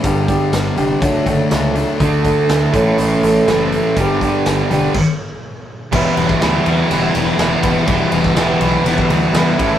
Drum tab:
CC |----------------|----------------|--------x-------|x---------------|
RD |----------------|----------------|----------------|--x-x-x-x-x-x-x-|
HH |x-x-x-x-x-x-x-x-|x-x-x-x-x-x-x-x-|x-x-x-x---------|----------------|
SD |----o-------o---|----o-------o---|----o-----------|---oo-------o---|
BD |o-o-----o-o-----|o-o---o---------|o-o-----o-------|o--o----------o-|

CC |----------------|
RD |x-x-x-x-x-x-x-x-|
HH |----------------|
SD |---oo-------o---|
BD |o--o-----o----o-|